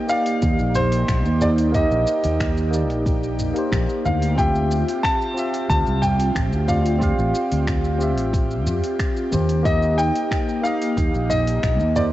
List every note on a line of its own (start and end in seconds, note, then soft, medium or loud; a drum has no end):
0.00 0.07 A#3 medium
0.00 4.34 A#3 medium
0.00 0.09 D#4 medium
0.00 4.34 D#4 medium
0.00 0.11 G4 medium
0.00 12.13 G4 medium
0.00 1.43 C5 medium
0.00 1.77 D#5 loud
0.00 0.11 G5 loud
0.07 1.36 A#3 medium
0.07 1.37 D#4 medium
0.07 1.38 G4 medium
0.07 0.77 F5 loud
0.07 shaker medium
0.12 1.39 D5 medium
0.26 open hi-hat medium
0.26 shaker soft
0.42 0.56 D#2 medium
0.42 kick loud
0.42 open hi-hat soft
0.42 shaker soft
0.59 1.03 A#1 loud
0.59 shaker soft
0.75 1.43 C5 loud
0.75 mid tom medium
0.75 shaker medium
0.92 open hi-hat soft
0.92 shaker soft
1.08 1.25 A#1 medium
1.08 finger snap loud
1.08 kick loud
1.08 open hi-hat soft
1.08 shaker soft
1.25 1.85 D#2 medium
1.25 shaker soft
1.40 1.70 A#3 medium
1.40 1.70 D#4 medium
1.40 1.71 G4 medium
1.40 1.71 C5 medium
1.40 1.49 D5 medium
1.40 mid tom medium
1.40 shaker medium
1.58 open hi-hat medium
1.58 shaker soft
1.72 2.68 A#3 medium
1.72 2.69 D#4 medium
1.72 2.70 G4 medium
1.72 2.69 D#5 medium
1.72 kick loud
1.72 mid tom medium
1.72 open hi-hat soft
1.72 shaker soft
1.77 2.71 D#5 loud
1.91 2.04 A#1 medium
1.91 shaker soft
2.07 shaker medium
2.24 2.90 D#2 medium
2.24 open hi-hat medium
2.24 shaker soft
2.40 finger snap loud
2.40 kick loud
2.40 open hi-hat soft
2.40 shaker soft
2.57 shaker soft
2.71 3.51 A#3 medium
2.71 3.52 D#4 medium
2.71 3.53 G4 medium
2.71 shaker medium
2.76 3.54 D5 medium
2.90 3.50 A#1 medium
2.90 open hi-hat soft
2.90 shaker soft
3.06 kick loud
3.06 open hi-hat soft
3.06 shaker soft
3.23 shaker soft
3.39 mid tom medium
3.39 shaker medium
3.54 4.33 A#3 medium
3.54 4.34 D#4 medium
3.54 4.35 G4 medium
3.54 open hi-hat soft
3.54 shaker soft
3.58 4.35 C5 medium
3.72 3.85 A#1 medium
3.72 finger snap loud
3.72 kick loud
3.72 open hi-hat soft
3.72 shaker soft
3.89 shaker soft
4.05 4.82 D2 medium
4.05 4.39 F5 medium
4.05 mid tom medium
4.05 shaker medium
4.22 open hi-hat medium
4.22 shaker soft
4.35 5.31 C4 medium
4.35 5.32 F4 medium
4.35 9.29 F4 medium
4.35 5.33 G4 medium
4.35 5.00 G5 loud
4.35 kick loud
4.35 mid tom medium
4.35 open hi-hat soft
4.35 shaker soft
4.39 9.29 C4 medium
4.39 5.34 E5 loud
4.55 shaker soft
4.71 shaker medium
4.88 open hi-hat medium
4.88 shaker soft
5.03 5.68 A5 loud
5.03 finger snap medium
5.03 kick loud
5.03 open hi-hat soft
5.03 shaker soft
5.22 shaker soft
5.34 6.63 C4 medium
5.34 6.64 F4 medium
5.34 6.65 G4 medium
5.34 shaker medium
5.39 6.66 E5 medium
5.54 open hi-hat medium
5.54 shaker soft
5.69 5.83 D2 loud
5.69 6.04 A5 loud
5.69 kick loud
5.69 open hi-hat soft
5.69 shaker soft
5.87 6.30 C2 medium
5.87 shaker soft
6.02 6.70 G5 loud
6.02 mid tom medium
6.02 shaker medium
6.20 open hi-hat medium
6.20 shaker soft
6.35 6.52 A1 medium
6.35 finger snap loud
6.35 kick loud
6.35 open hi-hat soft
6.35 shaker soft
6.52 7.13 D2 medium
6.52 shaker soft
6.67 6.97 C4 medium
6.67 6.98 F4 medium
6.67 6.98 G4 medium
6.67 6.99 D5 medium
6.67 7.96 F5 medium
6.67 mid tom medium
6.67 shaker medium
6.86 open hi-hat medium
6.86 shaker soft
6.99 7.95 C4 loud
6.99 7.96 F4 medium
6.99 7.97 G4 medium
6.99 kick loud
6.99 mid tom medium
6.99 open hi-hat soft
6.99 shaker soft
7.03 7.98 F5 loud
7.18 7.31 A1 loud
7.18 shaker soft
7.35 shaker medium
7.52 8.17 D2 medium
7.52 open hi-hat medium
7.52 shaker soft
7.67 finger snap loud
7.67 kick loud
7.67 open hi-hat soft
7.67 shaker soft
7.84 shaker soft
7.98 9.27 C4 medium
7.98 9.28 F4 medium
7.98 9.29 G4 medium
7.98 shaker medium
8.03 9.30 E5 medium
8.17 8.67 A1 medium
8.17 open hi-hat medium
8.17 shaker soft
8.33 kick loud
8.33 open hi-hat soft
8.33 shaker soft
8.51 shaker soft
8.67 8.80 F2 medium
8.67 mid tom medium
8.67 shaker medium
8.84 open hi-hat medium
8.84 shaker soft
8.99 finger snap loud
8.99 kick loud
8.99 open hi-hat soft
8.99 shaker soft
9.17 shaker soft
9.31 10.10 D#2 medium
9.31 9.61 A#3 medium
9.31 12.13 A#3 medium
9.31 9.61 D#4 medium
9.31 12.13 D#4 medium
9.31 9.62 G4 medium
9.31 9.62 C5 medium
9.31 mid tom medium
9.31 shaker medium
9.49 open hi-hat medium
9.49 shaker soft
9.63 10.59 A#3 medium
9.63 10.60 D#4 medium
9.63 10.61 G4 medium
9.63 9.99 D#5 loud
9.63 kick loud
9.63 mid tom medium
9.63 open hi-hat soft
9.63 shaker soft
9.68 10.62 D#5 loud
9.82 shaker soft
9.98 10.66 G5 loud
9.98 shaker medium
10.16 open hi-hat medium
10.16 shaker soft
10.31 finger snap medium
10.31 kick loud
10.31 open hi-hat soft
10.31 shaker soft
10.49 shaker soft
10.62 11.91 A#3 medium
10.62 11.92 D#4 medium
10.62 11.93 G4 medium
10.62 11.32 F5 loud
10.62 shaker medium
10.67 11.94 D#5 medium
10.82 open hi-hat medium
10.82 shaker soft
10.97 11.10 D#2 loud
10.97 kick loud
10.97 open hi-hat soft
10.97 shaker soft
11.14 11.58 A#1 loud
11.14 shaker soft
11.30 11.92 D#5 loud
11.30 mid tom medium
11.30 shaker medium
11.47 open hi-hat medium
11.47 shaker soft
11.63 11.80 A#1 medium
11.63 finger snap loud
11.63 kick medium
11.63 open hi-hat soft
11.63 shaker soft
11.80 12.13 D#2 medium
11.80 shaker soft
11.95 12.13 A#3 medium
11.95 12.13 D#4 medium
11.95 12.13 G4 medium
11.95 12.13 C5 medium
11.95 12.03 D5 medium
11.95 mid tom medium
11.95 shaker medium